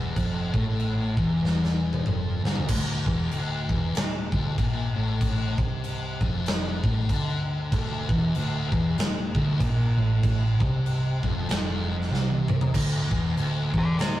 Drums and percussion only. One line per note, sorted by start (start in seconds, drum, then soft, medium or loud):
0.16 kick loud
0.16 crash medium
0.54 kick loud
0.80 crash medium
1.17 kick loud
1.45 snare medium
1.64 snare medium
1.93 mid tom medium
2.06 mid tom medium
2.45 snare loud
2.56 floor tom medium
2.68 kick loud
2.68 crash loud
2.68 crash medium
3.06 kick loud
3.31 crash medium
3.69 kick loud
3.95 snare loud
3.95 crash medium
4.32 kick loud
4.58 kick loud
4.58 crash medium
5.21 kick loud
5.21 crash medium
5.58 kick loud
5.84 crash medium
6.21 kick loud
6.46 snare loud
6.46 crash medium
6.84 kick loud
7.09 kick loud
7.09 crash medium
7.72 kick loud
7.72 crash medium
8.09 kick loud
8.35 crash medium
8.72 kick loud
8.98 snare loud
8.98 crash medium
9.35 kick loud
9.60 kick loud
9.60 crash medium
10.23 kick loud
10.23 crash medium
10.60 kick loud
10.86 crash medium
11.23 kick loud
11.49 snare loud
11.49 crash medium
12.01 snare soft
12.14 snare medium
12.30 high tom medium
12.48 mid tom medium
12.61 floor tom loud
12.74 kick loud
12.74 crash loud
12.74 crash medium
13.11 kick loud
13.37 crash medium
13.74 kick loud
13.99 snare loud
13.99 crash medium